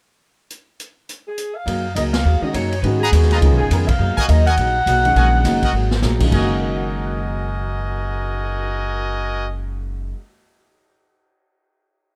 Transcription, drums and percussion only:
0.50 closed hi-hat soft
0.80 closed hi-hat medium
1.09 closed hi-hat medium
1.38 closed hi-hat medium
1.67 kick soft
1.67 ride medium
1.96 kick soft
1.96 hi-hat pedal medium
1.96 ride medium
2.14 snare medium
2.14 ride medium
2.54 kick soft
2.54 hi-hat pedal medium
2.54 ride medium
2.72 ride soft
2.83 kick soft
2.83 ride soft
3.12 kick soft
3.12 hi-hat pedal medium
3.12 ride medium
3.22 snare soft
3.31 snare soft
3.31 ride soft
3.42 kick soft
3.42 ride medium
3.71 kick soft
3.71 hi-hat pedal medium
3.71 ride medium
3.88 kick medium
3.88 ride medium
4.18 kick medium
4.29 kick soft
4.29 hi-hat pedal medium
4.29 ride medium
4.47 ride soft
4.57 kick soft
4.57 ride medium
4.87 kick soft
4.87 hi-hat pedal medium
4.87 ride medium
5.05 ride soft
5.16 kick soft
5.16 ride soft
5.45 kick soft
5.45 snare soft
5.45 hi-hat pedal medium
5.45 ride medium
5.62 kick medium
5.62 ride medium
5.91 snare medium
6.02 snare medium
6.02 hi-hat pedal medium
6.20 kick medium
6.20 crash medium
6.32 kick medium
6.32 crash medium
6.50 cymbal swell soft

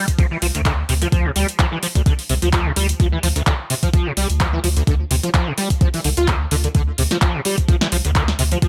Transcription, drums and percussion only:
0.08 kick medium
0.08 closed hi-hat medium
0.19 kick loud
0.19 closed hi-hat soft
0.42 open hi-hat loud
0.55 closed hi-hat medium
0.65 kick loud
0.65 clap loud
0.65 closed hi-hat medium
0.89 open hi-hat loud
1.02 closed hi-hat medium
1.12 kick loud
1.12 closed hi-hat medium
1.36 open hi-hat loud
1.49 closed hi-hat medium
1.59 kick loud
1.59 clap loud
1.59 closed hi-hat medium
1.83 open hi-hat loud
1.95 kick medium
1.95 closed hi-hat medium
2.06 kick loud
2.06 closed hi-hat soft
2.19 open hi-hat medium
2.29 open hi-hat loud
2.42 closed hi-hat medium
2.53 kick loud
2.53 clap loud
2.53 closed hi-hat medium
2.76 open hi-hat loud
2.89 closed hi-hat medium
3.00 kick loud
3.00 closed hi-hat medium
3.23 open hi-hat loud
3.36 closed hi-hat medium
3.47 kick loud
3.47 clap loud
3.47 closed hi-hat medium
3.70 open hi-hat loud
3.83 kick medium
3.83 closed hi-hat medium
3.93 kick loud
3.93 closed hi-hat medium
4.17 open hi-hat loud
4.30 closed hi-hat medium
4.40 kick loud
4.40 clap loud
4.40 closed hi-hat medium
4.64 open hi-hat loud
4.77 closed hi-hat medium
4.87 kick loud
4.87 closed hi-hat medium
5.11 open hi-hat loud
5.23 closed hi-hat medium
5.34 kick loud
5.34 clap loud
5.34 closed hi-hat medium
5.58 open hi-hat loud
5.70 kick medium
5.70 closed hi-hat medium
5.81 kick loud
5.81 closed hi-hat soft
5.94 open hi-hat medium
6.04 open hi-hat loud
6.17 closed hi-hat medium
6.28 kick loud
6.28 clap loud
6.28 closed hi-hat soft
6.51 open hi-hat loud
6.64 closed hi-hat medium
6.75 kick loud
6.75 closed hi-hat medium
6.98 open hi-hat loud
7.11 snare soft
7.11 closed hi-hat medium
7.22 kick loud
7.22 clap loud
7.22 closed hi-hat soft
7.45 open hi-hat loud
7.58 kick medium
7.58 closed hi-hat medium
7.69 kick loud
7.69 closed hi-hat soft
7.81 snare medium
7.92 open hi-hat medium
8.05 closed hi-hat medium
8.15 kick loud
8.15 clap loud
8.15 closed hi-hat medium
8.28 snare soft
8.39 open hi-hat loud
8.52 closed hi-hat medium
8.62 kick loud
8.62 closed hi-hat medium

